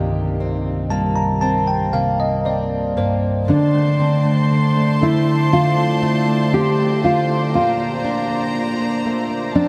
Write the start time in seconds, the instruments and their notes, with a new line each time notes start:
Already playing: tine electric piano C2 G2 D#3, steel-string acoustic guitar C3 A#3 G4, nylon-string guitar D#4
0.40 steel-string acoustic guitar C4
0.90 tine electric piano G3 A5, steel-string acoustic guitar A#3
1.16 tine electric piano A#5
1.41 steel-string acoustic guitar C4, tine electric piano A5
1.68 tine electric piano G5
1.93 tine electric piano C3 F5, steel-string acoustic guitar A#3
2.20 tine electric piano D#5
2.45 steel-string acoustic guitar C4, tine electric piano D5
2.97 tine electric piano G2 C5, steel-string acoustic guitar A#3
3.48 steel-string acoustic guitar D3, tine electric piano D3, nylon-string guitar D4, string section C5 D5 A5 C6
3.74 tine electric piano A3
4.00 tine electric piano D3, steel-string acoustic guitar C4
4.25 tine electric piano A3
4.51 tine electric piano D3
4.77 tine electric piano A3
5.01 tine electric piano D3, steel-string acoustic guitar A3, nylon-string guitar E4
5.28 tine electric piano A3
5.52 tine electric piano D3, steel-string acoustic guitar C4, nylon-string guitar F4
5.78 tine electric piano A3
6.02 tine electric piano D3, steel-string acoustic guitar A3
6.28 tine electric piano A3
6.53 tine electric piano D3, steel-string acoustic guitar C4, nylon-string guitar G4
6.79 tine electric piano A3
7.03 tine electric piano D3, steel-string acoustic guitar F4, nylon-string guitar F4
7.29 tine electric piano A3
7.54 steel-string acoustic guitar A#2, tine electric piano A#3, nylon-string guitar F4, string section A#5
7.80 tine electric piano A#3
8.04 tine electric piano A#3, steel-string acoustic guitar D4
8.30 tine electric piano A#3
8.55 tine electric piano A#3
8.81 tine electric piano A#3
9.05 steel-string acoustic guitar A3, tine electric piano A#3
9.30 tine electric piano A#3
9.54 tine electric piano F3, steel-string acoustic guitar C4, nylon-string guitar D4, string section A5